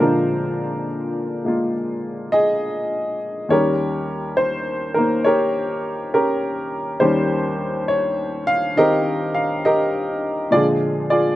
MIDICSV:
0, 0, Header, 1, 2, 480
1, 0, Start_track
1, 0, Time_signature, 4, 2, 24, 8
1, 0, Tempo, 877193
1, 6215, End_track
2, 0, Start_track
2, 0, Title_t, "Upright piano"
2, 0, Program_c, 0, 0
2, 0, Control_c, 0, 64, 127
2, 0, Note_on_c, 0, 46, 49
2, 0, Note_on_c, 0, 53, 43
2, 0, Note_on_c, 0, 60, 53
2, 0, Note_on_c, 0, 62, 59
2, 0, Note_on_c, 0, 65, 56
2, 0, Note_on_c, 0, 68, 59
2, 0, Note_on_c, 0, 70, 84
2, 0, Note_on_c, 0, 72, 80
2, 1, Note_off_c, 0, 70, 0
2, 1, Note_on_c, 0, 70, 64
2, 4, Note_on_c, 0, 56, 40
2, 5, Note_on_c, 0, 50, 52
2, 8, Note_off_c, 0, 62, 0
2, 8, Note_on_c, 0, 62, 51
2, 12, Note_off_c, 0, 65, 0
2, 12, Note_on_c, 0, 65, 52
2, 462, Note_off_c, 0, 68, 0
2, 784, Note_off_c, 0, 56, 0
2, 792, Note_on_c, 0, 56, 40
2, 800, Note_on_c, 0, 58, 39
2, 802, Note_off_c, 0, 65, 0
2, 810, Note_on_c, 0, 65, 48
2, 938, Note_off_c, 0, 70, 0
2, 942, Note_off_c, 0, 62, 0
2, 1270, Note_on_c, 0, 75, 92
2, 1279, Note_on_c, 0, 68, 66
2, 1730, Note_off_c, 0, 75, 0
2, 1899, Note_off_c, 0, 68, 0
2, 1908, Note_on_c, 0, 39, 46
2, 1915, Note_off_c, 0, 56, 0
2, 1916, Note_on_c, 0, 51, 41
2, 1917, Note_off_c, 0, 46, 0
2, 1917, Note_on_c, 0, 73, 82
2, 1919, Note_off_c, 0, 53, 0
2, 1919, Note_off_c, 0, 58, 0
2, 1922, Note_off_c, 0, 50, 0
2, 1922, Note_on_c, 0, 70, 59
2, 1924, Note_off_c, 0, 65, 0
2, 1924, Control_c, 0, 64, 0
2, 1924, Note_on_c, 0, 67, 56
2, 1926, Note_off_c, 0, 60, 0
2, 1926, Note_on_c, 0, 55, 39
2, 1928, Note_off_c, 0, 72, 0
2, 1936, Note_on_c, 0, 61, 53
2, 2028, Control_c, 0, 64, 127
2, 2390, Note_on_c, 0, 72, 79
2, 2412, Note_off_c, 0, 73, 0
2, 2697, Note_off_c, 0, 70, 0
2, 2703, Note_off_c, 0, 51, 0
2, 2705, Note_on_c, 0, 70, 74
2, 2711, Note_on_c, 0, 51, 42
2, 2720, Note_off_c, 0, 72, 0
2, 2727, Note_on_c, 0, 58, 47
2, 2859, Note_off_c, 0, 67, 0
2, 2870, Note_off_c, 0, 70, 0
2, 2870, Note_on_c, 0, 73, 85
2, 2879, Note_on_c, 0, 70, 65
2, 2882, Note_on_c, 0, 67, 57
2, 3332, Note_off_c, 0, 73, 0
2, 3352, Note_off_c, 0, 61, 0
2, 3352, Note_off_c, 0, 67, 0
2, 3352, Note_off_c, 0, 70, 0
2, 3360, Note_on_c, 0, 67, 54
2, 3360, Note_on_c, 0, 70, 75
2, 3361, Note_on_c, 0, 61, 54
2, 3825, Note_off_c, 0, 67, 0
2, 3828, Note_off_c, 0, 39, 0
2, 3829, Note_off_c, 0, 51, 0
2, 3830, Note_on_c, 0, 72, 82
2, 3834, Note_off_c, 0, 55, 0
2, 3834, Note_on_c, 0, 67, 60
2, 3836, Note_off_c, 0, 61, 0
2, 3836, Note_on_c, 0, 39, 56
2, 3837, Note_on_c, 0, 51, 46
2, 3842, Note_on_c, 0, 55, 48
2, 3844, Note_off_c, 0, 58, 0
2, 3844, Note_on_c, 0, 61, 56
2, 3853, Note_off_c, 0, 70, 0
2, 4313, Note_on_c, 0, 73, 82
2, 4328, Note_off_c, 0, 72, 0
2, 4635, Note_on_c, 0, 77, 97
2, 4640, Note_off_c, 0, 73, 0
2, 4773, Note_off_c, 0, 67, 0
2, 4784, Note_off_c, 0, 51, 0
2, 4787, Note_off_c, 0, 77, 0
2, 4793, Note_on_c, 0, 51, 47
2, 4802, Note_on_c, 0, 75, 96
2, 4806, Note_on_c, 0, 70, 67
2, 4807, Note_on_c, 0, 67, 67
2, 4810, Note_on_c, 0, 60, 53
2, 5093, Note_off_c, 0, 75, 0
2, 5113, Note_on_c, 0, 77, 83
2, 5150, Note_off_c, 0, 77, 0
2, 5276, Note_off_c, 0, 67, 0
2, 5277, Note_off_c, 0, 70, 0
2, 5281, Note_on_c, 0, 75, 87
2, 5284, Note_on_c, 0, 67, 62
2, 5286, Note_on_c, 0, 70, 64
2, 5738, Note_off_c, 0, 67, 0
2, 5739, Note_off_c, 0, 70, 0
2, 5750, Note_on_c, 0, 46, 52
2, 5754, Note_off_c, 0, 51, 0
2, 5756, Note_off_c, 0, 39, 0
2, 5756, Note_on_c, 0, 74, 92
2, 5758, Note_off_c, 0, 55, 0
2, 5759, Note_off_c, 0, 61, 0
2, 5759, Note_on_c, 0, 53, 48
2, 5760, Note_on_c, 0, 65, 62
2, 5761, Note_on_c, 0, 68, 63
2, 5763, Note_off_c, 0, 60, 0
2, 5763, Control_c, 0, 64, 0
2, 5768, Note_on_c, 0, 56, 49
2, 5773, Note_off_c, 0, 75, 0
2, 5777, Note_on_c, 0, 50, 59
2, 5827, Note_off_c, 0, 74, 0
2, 5868, Control_c, 0, 64, 127
2, 6075, Note_off_c, 0, 65, 0
2, 6075, Note_on_c, 0, 74, 87
2, 6078, Note_off_c, 0, 68, 0
2, 6083, Note_on_c, 0, 65, 59
2, 6086, Note_on_c, 0, 68, 57
2, 6215, Note_off_c, 0, 46, 0
2, 6215, Note_off_c, 0, 50, 0
2, 6215, Note_off_c, 0, 53, 0
2, 6215, Note_off_c, 0, 56, 0
2, 6215, Note_off_c, 0, 65, 0
2, 6215, Note_off_c, 0, 68, 0
2, 6215, Note_off_c, 0, 74, 0
2, 6215, End_track
0, 0, End_of_file